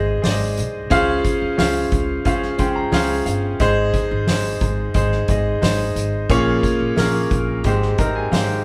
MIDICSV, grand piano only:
0, 0, Header, 1, 2, 480
1, 0, Start_track
1, 0, Key_signature, -4, "major"
1, 0, Tempo, 674157
1, 647, Time_signature, 4, 2, 24, 8
1, 6155, End_track
2, 0, Start_track
2, 0, Title_t, "Grand piano"
2, 0, Program_c, 0, 0
2, 0, Control_c, 0, 64, 127
2, 0, Note_on_c, 0, 44, 69
2, 0, Note_on_c, 0, 68, 81
2, 0, Note_on_c, 0, 72, 73
2, 0, Note_on_c, 0, 75, 92
2, 133, Note_off_c, 0, 68, 0
2, 135, Note_off_c, 0, 72, 0
2, 139, Note_off_c, 0, 75, 0
2, 157, Note_on_c, 0, 68, 80
2, 168, Note_on_c, 0, 72, 74
2, 171, Note_on_c, 0, 74, 69
2, 216, Note_off_c, 0, 74, 0
2, 218, Note_on_c, 0, 75, 87
2, 576, Note_off_c, 0, 68, 0
2, 582, Note_off_c, 0, 72, 0
2, 606, Note_off_c, 0, 75, 0
2, 641, Note_on_c, 0, 61, 111
2, 647, Note_on_c, 0, 65, 102
2, 648, Note_on_c, 0, 68, 103
2, 650, Note_on_c, 0, 49, 72
2, 651, Note_on_c, 0, 72, 97
2, 653, Note_on_c, 0, 77, 125
2, 658, Control_c, 0, 64, 0
2, 660, Note_off_c, 0, 44, 0
2, 773, Control_c, 0, 64, 127
2, 1058, Note_off_c, 0, 61, 0
2, 1061, Note_off_c, 0, 65, 0
2, 1061, Note_off_c, 0, 68, 0
2, 1063, Note_off_c, 0, 72, 0
2, 1064, Note_off_c, 0, 77, 0
2, 1119, Note_on_c, 0, 61, 83
2, 1123, Note_on_c, 0, 65, 78
2, 1123, Note_on_c, 0, 68, 76
2, 1128, Note_on_c, 0, 72, 72
2, 1130, Note_on_c, 0, 77, 95
2, 1339, Note_off_c, 0, 49, 0
2, 1537, Note_off_c, 0, 61, 0
2, 1538, Note_off_c, 0, 65, 0
2, 1539, Note_off_c, 0, 68, 0
2, 1541, Note_off_c, 0, 72, 0
2, 1542, Note_off_c, 0, 77, 0
2, 1601, Note_on_c, 0, 61, 86
2, 1605, Note_on_c, 0, 65, 81
2, 1607, Note_on_c, 0, 68, 79
2, 1612, Note_on_c, 0, 77, 96
2, 1613, Note_on_c, 0, 72, 75
2, 1810, Note_off_c, 0, 61, 0
2, 1813, Note_off_c, 0, 65, 0
2, 1813, Note_off_c, 0, 68, 0
2, 1816, Note_off_c, 0, 72, 0
2, 1816, Note_off_c, 0, 77, 0
2, 1838, Note_on_c, 0, 61, 77
2, 1845, Note_on_c, 0, 68, 74
2, 1846, Note_on_c, 0, 65, 68
2, 1847, Note_on_c, 0, 84, 70
2, 1848, Note_on_c, 0, 72, 73
2, 1853, Note_on_c, 0, 79, 93
2, 1958, Note_off_c, 0, 84, 0
2, 1963, Note_on_c, 0, 82, 73
2, 2049, Note_off_c, 0, 61, 0
2, 2052, Note_off_c, 0, 68, 0
2, 2053, Note_off_c, 0, 65, 0
2, 2054, Note_off_c, 0, 72, 0
2, 2056, Note_off_c, 0, 79, 0
2, 2076, Note_off_c, 0, 82, 0
2, 2080, Note_on_c, 0, 61, 88
2, 2080, Note_on_c, 0, 65, 81
2, 2082, Note_on_c, 0, 68, 81
2, 2083, Note_on_c, 0, 80, 68
2, 2088, Note_on_c, 0, 72, 79
2, 2091, Note_on_c, 0, 77, 91
2, 2306, Note_off_c, 0, 77, 0
2, 2307, Note_off_c, 0, 80, 0
2, 2316, Note_on_c, 0, 77, 73
2, 2497, Note_off_c, 0, 61, 0
2, 2497, Note_off_c, 0, 65, 0
2, 2498, Note_off_c, 0, 68, 0
2, 2500, Note_off_c, 0, 72, 0
2, 2544, Note_off_c, 0, 77, 0
2, 2562, Note_on_c, 0, 63, 112
2, 2566, Note_on_c, 0, 44, 80
2, 2567, Note_on_c, 0, 68, 108
2, 2572, Note_on_c, 0, 72, 127
2, 2575, Control_c, 0, 64, 0
2, 2679, Control_c, 0, 64, 127
2, 2978, Note_off_c, 0, 63, 0
2, 2980, Note_off_c, 0, 68, 0
2, 2982, Note_off_c, 0, 72, 0
2, 3042, Note_on_c, 0, 63, 81
2, 3047, Note_on_c, 0, 68, 81
2, 3054, Note_on_c, 0, 72, 94
2, 3257, Note_off_c, 0, 44, 0
2, 3458, Note_off_c, 0, 63, 0
2, 3460, Note_off_c, 0, 68, 0
2, 3464, Note_off_c, 0, 72, 0
2, 3518, Note_on_c, 0, 63, 91
2, 3526, Note_on_c, 0, 68, 76
2, 3531, Note_on_c, 0, 72, 96
2, 3728, Note_off_c, 0, 63, 0
2, 3732, Note_off_c, 0, 68, 0
2, 3735, Note_off_c, 0, 72, 0
2, 3766, Note_on_c, 0, 63, 77
2, 3770, Note_on_c, 0, 68, 74
2, 3778, Note_on_c, 0, 75, 86
2, 3972, Note_off_c, 0, 63, 0
2, 3974, Note_off_c, 0, 68, 0
2, 3978, Note_off_c, 0, 75, 0
2, 3996, Note_on_c, 0, 63, 83
2, 4000, Note_on_c, 0, 68, 80
2, 4008, Note_on_c, 0, 72, 89
2, 4415, Note_off_c, 0, 63, 0
2, 4417, Note_off_c, 0, 68, 0
2, 4421, Note_off_c, 0, 72, 0
2, 4482, Note_on_c, 0, 58, 106
2, 4485, Note_on_c, 0, 61, 101
2, 4486, Note_on_c, 0, 46, 77
2, 4487, Note_on_c, 0, 65, 100
2, 4488, Note_on_c, 0, 68, 106
2, 4493, Control_c, 0, 64, 0
2, 4494, Note_on_c, 0, 73, 127
2, 4605, Control_c, 0, 64, 127
2, 4898, Note_off_c, 0, 58, 0
2, 4899, Note_off_c, 0, 61, 0
2, 4900, Note_off_c, 0, 65, 0
2, 4900, Note_off_c, 0, 68, 0
2, 4904, Note_off_c, 0, 73, 0
2, 4958, Note_on_c, 0, 58, 87
2, 4961, Note_on_c, 0, 61, 70
2, 4966, Note_on_c, 0, 65, 80
2, 4967, Note_on_c, 0, 68, 76
2, 4971, Note_on_c, 0, 70, 93
2, 5177, Note_off_c, 0, 46, 0
2, 5376, Note_off_c, 0, 58, 0
2, 5377, Note_off_c, 0, 61, 0
2, 5380, Note_off_c, 0, 65, 0
2, 5380, Note_off_c, 0, 68, 0
2, 5383, Note_off_c, 0, 70, 0
2, 5444, Note_on_c, 0, 56, 91
2, 5451, Note_on_c, 0, 60, 79
2, 5453, Note_on_c, 0, 44, 72
2, 5454, Note_on_c, 0, 63, 76
2, 5454, Note_on_c, 0, 67, 81
2, 5456, Control_c, 0, 64, 0
2, 5457, Note_on_c, 0, 72, 90
2, 5591, Control_c, 0, 64, 127
2, 5652, Note_off_c, 0, 56, 0
2, 5655, Note_off_c, 0, 60, 0
2, 5657, Note_off_c, 0, 63, 0
2, 5657, Note_off_c, 0, 67, 0
2, 5659, Note_off_c, 0, 72, 0
2, 5681, Note_on_c, 0, 56, 74
2, 5686, Note_on_c, 0, 60, 75
2, 5687, Note_on_c, 0, 82, 72
2, 5688, Note_on_c, 0, 63, 71
2, 5691, Note_on_c, 0, 67, 77
2, 5697, Note_on_c, 0, 70, 88
2, 5798, Note_off_c, 0, 82, 0
2, 5806, Note_on_c, 0, 80, 69
2, 5891, Note_off_c, 0, 56, 0
2, 5893, Note_off_c, 0, 60, 0
2, 5894, Note_off_c, 0, 63, 0
2, 5896, Note_off_c, 0, 67, 0
2, 5898, Note_off_c, 0, 70, 0
2, 5918, Note_off_c, 0, 80, 0
2, 5919, Note_on_c, 0, 56, 79
2, 5923, Note_on_c, 0, 60, 69
2, 5923, Note_on_c, 0, 77, 66
2, 5926, Note_on_c, 0, 63, 71
2, 5927, Note_on_c, 0, 67, 79
2, 5928, Note_on_c, 0, 72, 90
2, 6142, Note_off_c, 0, 44, 0
2, 6148, Note_off_c, 0, 77, 0
2, 6155, Note_off_c, 0, 56, 0
2, 6155, Note_off_c, 0, 60, 0
2, 6155, Note_off_c, 0, 63, 0
2, 6155, Note_off_c, 0, 67, 0
2, 6155, Note_off_c, 0, 72, 0
2, 6155, End_track
0, 0, End_of_file